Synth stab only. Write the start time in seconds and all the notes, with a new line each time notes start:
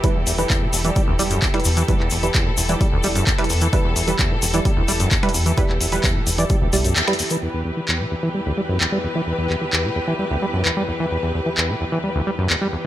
0.04 G3 E4 B4
0.38 G3 E4 B4
0.85 G3 E4 D5
1.19 G3 E4 D5
1.54 G3 E4 B4
1.88 G3 E4 B4
2.23 G3 E4 B4
2.69 G3 E4 D5
3.04 G3 E4 D5
3.38 G3 E4 B4
3.73 G3 E4 B4
4.08 G3 E4 B4
4.54 G3 E4 D5
4.88 G3 E4 D5
5.23 G3 E4 B4
5.58 G3 E4 B4
5.92 G3 E4 B4
6.38 G3 E4 D5
6.73 G3 E4 D5
7.08 G3 E4 B4